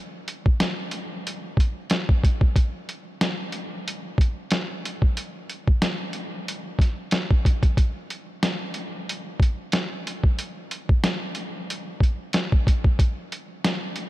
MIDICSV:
0, 0, Header, 1, 2, 480
1, 0, Start_track
1, 0, Tempo, 652174
1, 1880, Time_signature, 4, 2, 24, 8
1, 10372, End_track
2, 0, Start_track
2, 0, Title_t, "Drums"
2, 204, Note_on_c, 9, 42, 82
2, 278, Note_off_c, 9, 42, 0
2, 337, Note_on_c, 9, 36, 95
2, 411, Note_off_c, 9, 36, 0
2, 443, Note_on_c, 9, 38, 123
2, 444, Note_on_c, 9, 42, 104
2, 516, Note_off_c, 9, 38, 0
2, 518, Note_off_c, 9, 42, 0
2, 673, Note_on_c, 9, 42, 75
2, 746, Note_off_c, 9, 42, 0
2, 933, Note_on_c, 9, 42, 92
2, 1007, Note_off_c, 9, 42, 0
2, 1156, Note_on_c, 9, 36, 106
2, 1178, Note_on_c, 9, 42, 76
2, 1230, Note_off_c, 9, 36, 0
2, 1251, Note_off_c, 9, 42, 0
2, 1396, Note_on_c, 9, 42, 88
2, 1405, Note_on_c, 9, 38, 119
2, 1470, Note_off_c, 9, 42, 0
2, 1478, Note_off_c, 9, 38, 0
2, 1538, Note_on_c, 9, 36, 97
2, 1612, Note_off_c, 9, 36, 0
2, 1645, Note_on_c, 9, 36, 94
2, 1653, Note_on_c, 9, 42, 83
2, 1719, Note_off_c, 9, 36, 0
2, 1727, Note_off_c, 9, 42, 0
2, 1775, Note_on_c, 9, 36, 89
2, 1848, Note_off_c, 9, 36, 0
2, 1882, Note_on_c, 9, 36, 112
2, 1885, Note_on_c, 9, 42, 99
2, 1955, Note_off_c, 9, 36, 0
2, 1959, Note_off_c, 9, 42, 0
2, 2126, Note_on_c, 9, 42, 79
2, 2199, Note_off_c, 9, 42, 0
2, 2363, Note_on_c, 9, 38, 121
2, 2365, Note_on_c, 9, 42, 99
2, 2437, Note_off_c, 9, 38, 0
2, 2438, Note_off_c, 9, 42, 0
2, 2594, Note_on_c, 9, 42, 72
2, 2667, Note_off_c, 9, 42, 0
2, 2853, Note_on_c, 9, 42, 94
2, 2926, Note_off_c, 9, 42, 0
2, 3076, Note_on_c, 9, 36, 102
2, 3098, Note_on_c, 9, 42, 78
2, 3150, Note_off_c, 9, 36, 0
2, 3172, Note_off_c, 9, 42, 0
2, 3316, Note_on_c, 9, 42, 89
2, 3324, Note_on_c, 9, 38, 119
2, 3390, Note_off_c, 9, 42, 0
2, 3398, Note_off_c, 9, 38, 0
2, 3573, Note_on_c, 9, 42, 83
2, 3647, Note_off_c, 9, 42, 0
2, 3694, Note_on_c, 9, 36, 92
2, 3768, Note_off_c, 9, 36, 0
2, 3805, Note_on_c, 9, 42, 97
2, 3879, Note_off_c, 9, 42, 0
2, 4045, Note_on_c, 9, 42, 82
2, 4118, Note_off_c, 9, 42, 0
2, 4177, Note_on_c, 9, 36, 95
2, 4251, Note_off_c, 9, 36, 0
2, 4283, Note_on_c, 9, 38, 120
2, 4284, Note_on_c, 9, 42, 102
2, 4356, Note_off_c, 9, 38, 0
2, 4358, Note_off_c, 9, 42, 0
2, 4512, Note_on_c, 9, 42, 73
2, 4586, Note_off_c, 9, 42, 0
2, 4772, Note_on_c, 9, 42, 91
2, 4845, Note_off_c, 9, 42, 0
2, 4995, Note_on_c, 9, 36, 105
2, 5003, Note_on_c, 9, 38, 41
2, 5016, Note_on_c, 9, 42, 77
2, 5069, Note_off_c, 9, 36, 0
2, 5077, Note_off_c, 9, 38, 0
2, 5089, Note_off_c, 9, 42, 0
2, 5234, Note_on_c, 9, 42, 91
2, 5243, Note_on_c, 9, 38, 115
2, 5308, Note_off_c, 9, 42, 0
2, 5316, Note_off_c, 9, 38, 0
2, 5377, Note_on_c, 9, 36, 100
2, 5450, Note_off_c, 9, 36, 0
2, 5484, Note_on_c, 9, 36, 94
2, 5491, Note_on_c, 9, 42, 82
2, 5558, Note_off_c, 9, 36, 0
2, 5565, Note_off_c, 9, 42, 0
2, 5613, Note_on_c, 9, 36, 88
2, 5615, Note_on_c, 9, 42, 61
2, 5687, Note_off_c, 9, 36, 0
2, 5689, Note_off_c, 9, 42, 0
2, 5721, Note_on_c, 9, 36, 111
2, 5724, Note_on_c, 9, 42, 97
2, 5794, Note_off_c, 9, 36, 0
2, 5797, Note_off_c, 9, 42, 0
2, 5964, Note_on_c, 9, 42, 78
2, 6038, Note_off_c, 9, 42, 0
2, 6203, Note_on_c, 9, 38, 119
2, 6204, Note_on_c, 9, 42, 102
2, 6276, Note_off_c, 9, 38, 0
2, 6278, Note_off_c, 9, 42, 0
2, 6433, Note_on_c, 9, 42, 73
2, 6506, Note_off_c, 9, 42, 0
2, 6693, Note_on_c, 9, 42, 91
2, 6766, Note_off_c, 9, 42, 0
2, 6915, Note_on_c, 9, 36, 106
2, 6937, Note_on_c, 9, 42, 79
2, 6989, Note_off_c, 9, 36, 0
2, 7010, Note_off_c, 9, 42, 0
2, 7155, Note_on_c, 9, 42, 93
2, 7163, Note_on_c, 9, 38, 118
2, 7229, Note_off_c, 9, 42, 0
2, 7237, Note_off_c, 9, 38, 0
2, 7412, Note_on_c, 9, 42, 83
2, 7485, Note_off_c, 9, 42, 0
2, 7533, Note_on_c, 9, 36, 90
2, 7607, Note_off_c, 9, 36, 0
2, 7644, Note_on_c, 9, 42, 99
2, 7717, Note_off_c, 9, 42, 0
2, 7884, Note_on_c, 9, 42, 81
2, 7957, Note_off_c, 9, 42, 0
2, 8017, Note_on_c, 9, 36, 96
2, 8090, Note_off_c, 9, 36, 0
2, 8123, Note_on_c, 9, 38, 121
2, 8124, Note_on_c, 9, 42, 99
2, 8196, Note_off_c, 9, 38, 0
2, 8198, Note_off_c, 9, 42, 0
2, 8352, Note_on_c, 9, 42, 74
2, 8426, Note_off_c, 9, 42, 0
2, 8612, Note_on_c, 9, 42, 94
2, 8686, Note_off_c, 9, 42, 0
2, 8835, Note_on_c, 9, 36, 107
2, 8857, Note_on_c, 9, 42, 79
2, 8909, Note_off_c, 9, 36, 0
2, 8930, Note_off_c, 9, 42, 0
2, 9076, Note_on_c, 9, 42, 91
2, 9084, Note_on_c, 9, 38, 122
2, 9149, Note_off_c, 9, 42, 0
2, 9158, Note_off_c, 9, 38, 0
2, 9217, Note_on_c, 9, 36, 102
2, 9291, Note_off_c, 9, 36, 0
2, 9325, Note_on_c, 9, 36, 89
2, 9332, Note_on_c, 9, 42, 82
2, 9398, Note_off_c, 9, 36, 0
2, 9406, Note_off_c, 9, 42, 0
2, 9453, Note_on_c, 9, 36, 88
2, 9527, Note_off_c, 9, 36, 0
2, 9561, Note_on_c, 9, 36, 107
2, 9565, Note_on_c, 9, 42, 97
2, 9634, Note_off_c, 9, 36, 0
2, 9638, Note_off_c, 9, 42, 0
2, 9805, Note_on_c, 9, 42, 81
2, 9878, Note_off_c, 9, 42, 0
2, 10043, Note_on_c, 9, 38, 121
2, 10044, Note_on_c, 9, 42, 103
2, 10116, Note_off_c, 9, 38, 0
2, 10118, Note_off_c, 9, 42, 0
2, 10272, Note_on_c, 9, 42, 76
2, 10346, Note_off_c, 9, 42, 0
2, 10372, End_track
0, 0, End_of_file